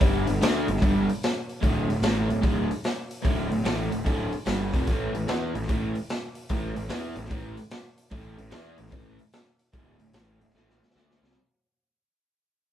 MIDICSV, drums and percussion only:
0, 0, Header, 1, 2, 480
1, 0, Start_track
1, 0, Tempo, 405954
1, 7, Time_signature, 4, 2, 24, 8
1, 15050, End_track
2, 0, Start_track
2, 0, Title_t, "Drums"
2, 11, Note_on_c, 9, 36, 98
2, 13, Note_on_c, 9, 46, 72
2, 129, Note_off_c, 9, 36, 0
2, 131, Note_off_c, 9, 46, 0
2, 321, Note_on_c, 9, 46, 58
2, 439, Note_off_c, 9, 46, 0
2, 501, Note_on_c, 9, 46, 83
2, 511, Note_on_c, 9, 38, 121
2, 619, Note_off_c, 9, 46, 0
2, 629, Note_off_c, 9, 38, 0
2, 805, Note_on_c, 9, 46, 53
2, 909, Note_on_c, 9, 38, 30
2, 923, Note_off_c, 9, 46, 0
2, 971, Note_on_c, 9, 36, 86
2, 972, Note_on_c, 9, 46, 70
2, 1028, Note_off_c, 9, 38, 0
2, 1089, Note_off_c, 9, 36, 0
2, 1090, Note_off_c, 9, 46, 0
2, 1293, Note_on_c, 9, 46, 52
2, 1411, Note_off_c, 9, 46, 0
2, 1456, Note_on_c, 9, 46, 63
2, 1467, Note_on_c, 9, 38, 96
2, 1575, Note_off_c, 9, 46, 0
2, 1585, Note_off_c, 9, 38, 0
2, 1765, Note_on_c, 9, 46, 48
2, 1883, Note_off_c, 9, 46, 0
2, 1925, Note_on_c, 9, 36, 90
2, 1933, Note_on_c, 9, 46, 64
2, 2043, Note_off_c, 9, 36, 0
2, 2052, Note_off_c, 9, 46, 0
2, 2246, Note_on_c, 9, 46, 51
2, 2364, Note_off_c, 9, 46, 0
2, 2398, Note_on_c, 9, 46, 81
2, 2409, Note_on_c, 9, 38, 122
2, 2517, Note_off_c, 9, 46, 0
2, 2527, Note_off_c, 9, 38, 0
2, 2723, Note_on_c, 9, 46, 56
2, 2841, Note_off_c, 9, 46, 0
2, 2878, Note_on_c, 9, 46, 68
2, 2879, Note_on_c, 9, 36, 101
2, 2996, Note_off_c, 9, 46, 0
2, 2997, Note_off_c, 9, 36, 0
2, 3203, Note_on_c, 9, 46, 57
2, 3321, Note_off_c, 9, 46, 0
2, 3359, Note_on_c, 9, 46, 59
2, 3370, Note_on_c, 9, 38, 79
2, 3477, Note_off_c, 9, 46, 0
2, 3488, Note_off_c, 9, 38, 0
2, 3674, Note_on_c, 9, 46, 57
2, 3793, Note_off_c, 9, 46, 0
2, 3840, Note_on_c, 9, 36, 98
2, 3843, Note_on_c, 9, 46, 72
2, 3959, Note_off_c, 9, 36, 0
2, 3961, Note_off_c, 9, 46, 0
2, 4156, Note_on_c, 9, 46, 56
2, 4275, Note_off_c, 9, 46, 0
2, 4319, Note_on_c, 9, 46, 79
2, 4330, Note_on_c, 9, 38, 109
2, 4437, Note_off_c, 9, 46, 0
2, 4448, Note_off_c, 9, 38, 0
2, 4635, Note_on_c, 9, 46, 59
2, 4754, Note_off_c, 9, 46, 0
2, 4801, Note_on_c, 9, 46, 69
2, 4803, Note_on_c, 9, 36, 91
2, 4919, Note_off_c, 9, 46, 0
2, 4921, Note_off_c, 9, 36, 0
2, 5114, Note_on_c, 9, 46, 50
2, 5232, Note_off_c, 9, 46, 0
2, 5273, Note_on_c, 9, 46, 60
2, 5284, Note_on_c, 9, 38, 93
2, 5391, Note_off_c, 9, 46, 0
2, 5402, Note_off_c, 9, 38, 0
2, 5599, Note_on_c, 9, 36, 101
2, 5606, Note_on_c, 9, 46, 58
2, 5717, Note_off_c, 9, 36, 0
2, 5724, Note_off_c, 9, 46, 0
2, 5760, Note_on_c, 9, 46, 66
2, 5766, Note_on_c, 9, 36, 97
2, 5878, Note_off_c, 9, 46, 0
2, 5884, Note_off_c, 9, 36, 0
2, 6085, Note_on_c, 9, 46, 53
2, 6204, Note_off_c, 9, 46, 0
2, 6244, Note_on_c, 9, 46, 73
2, 6254, Note_on_c, 9, 38, 120
2, 6362, Note_off_c, 9, 46, 0
2, 6373, Note_off_c, 9, 38, 0
2, 6564, Note_on_c, 9, 46, 52
2, 6648, Note_on_c, 9, 38, 30
2, 6683, Note_off_c, 9, 46, 0
2, 6728, Note_on_c, 9, 46, 69
2, 6731, Note_on_c, 9, 36, 104
2, 6766, Note_off_c, 9, 38, 0
2, 6846, Note_off_c, 9, 46, 0
2, 6849, Note_off_c, 9, 36, 0
2, 7037, Note_on_c, 9, 46, 53
2, 7155, Note_off_c, 9, 46, 0
2, 7206, Note_on_c, 9, 46, 62
2, 7217, Note_on_c, 9, 38, 91
2, 7324, Note_off_c, 9, 46, 0
2, 7335, Note_off_c, 9, 38, 0
2, 7510, Note_on_c, 9, 46, 60
2, 7628, Note_off_c, 9, 46, 0
2, 7677, Note_on_c, 9, 46, 72
2, 7686, Note_on_c, 9, 36, 92
2, 7796, Note_off_c, 9, 46, 0
2, 7804, Note_off_c, 9, 36, 0
2, 7997, Note_on_c, 9, 46, 56
2, 8115, Note_off_c, 9, 46, 0
2, 8151, Note_on_c, 9, 46, 76
2, 8162, Note_on_c, 9, 38, 111
2, 8269, Note_off_c, 9, 46, 0
2, 8280, Note_off_c, 9, 38, 0
2, 8462, Note_on_c, 9, 46, 57
2, 8573, Note_on_c, 9, 38, 31
2, 8581, Note_off_c, 9, 46, 0
2, 8641, Note_on_c, 9, 36, 99
2, 8641, Note_on_c, 9, 46, 73
2, 8691, Note_off_c, 9, 38, 0
2, 8759, Note_off_c, 9, 46, 0
2, 8760, Note_off_c, 9, 36, 0
2, 8951, Note_on_c, 9, 46, 54
2, 9069, Note_off_c, 9, 46, 0
2, 9111, Note_on_c, 9, 46, 63
2, 9122, Note_on_c, 9, 38, 101
2, 9229, Note_off_c, 9, 46, 0
2, 9240, Note_off_c, 9, 38, 0
2, 9431, Note_on_c, 9, 46, 55
2, 9549, Note_off_c, 9, 46, 0
2, 9592, Note_on_c, 9, 46, 72
2, 9597, Note_on_c, 9, 36, 96
2, 9710, Note_off_c, 9, 46, 0
2, 9715, Note_off_c, 9, 36, 0
2, 9912, Note_on_c, 9, 46, 51
2, 10030, Note_off_c, 9, 46, 0
2, 10066, Note_on_c, 9, 46, 78
2, 10077, Note_on_c, 9, 38, 108
2, 10184, Note_off_c, 9, 46, 0
2, 10195, Note_off_c, 9, 38, 0
2, 10378, Note_on_c, 9, 46, 57
2, 10484, Note_on_c, 9, 38, 29
2, 10497, Note_off_c, 9, 46, 0
2, 10546, Note_on_c, 9, 46, 71
2, 10552, Note_on_c, 9, 36, 95
2, 10602, Note_off_c, 9, 38, 0
2, 10665, Note_off_c, 9, 46, 0
2, 10670, Note_off_c, 9, 36, 0
2, 10865, Note_on_c, 9, 46, 47
2, 10983, Note_off_c, 9, 46, 0
2, 11029, Note_on_c, 9, 46, 62
2, 11040, Note_on_c, 9, 38, 96
2, 11147, Note_off_c, 9, 46, 0
2, 11158, Note_off_c, 9, 38, 0
2, 11341, Note_on_c, 9, 46, 54
2, 11460, Note_off_c, 9, 46, 0
2, 11507, Note_on_c, 9, 46, 62
2, 11511, Note_on_c, 9, 36, 104
2, 11625, Note_off_c, 9, 46, 0
2, 11629, Note_off_c, 9, 36, 0
2, 11818, Note_on_c, 9, 46, 58
2, 11936, Note_off_c, 9, 46, 0
2, 11982, Note_on_c, 9, 46, 83
2, 11993, Note_on_c, 9, 38, 118
2, 12100, Note_off_c, 9, 46, 0
2, 12111, Note_off_c, 9, 38, 0
2, 12311, Note_on_c, 9, 46, 61
2, 12408, Note_on_c, 9, 38, 29
2, 12429, Note_off_c, 9, 46, 0
2, 12480, Note_off_c, 9, 38, 0
2, 12480, Note_on_c, 9, 38, 55
2, 12598, Note_off_c, 9, 38, 0
2, 12648, Note_on_c, 9, 38, 54
2, 12767, Note_off_c, 9, 38, 0
2, 12804, Note_on_c, 9, 38, 64
2, 12893, Note_off_c, 9, 38, 0
2, 12893, Note_on_c, 9, 38, 66
2, 12965, Note_off_c, 9, 38, 0
2, 12965, Note_on_c, 9, 38, 75
2, 13083, Note_off_c, 9, 38, 0
2, 13136, Note_on_c, 9, 38, 78
2, 13254, Note_off_c, 9, 38, 0
2, 13289, Note_on_c, 9, 38, 94
2, 13372, Note_off_c, 9, 38, 0
2, 13372, Note_on_c, 9, 38, 80
2, 13490, Note_off_c, 9, 38, 0
2, 15050, End_track
0, 0, End_of_file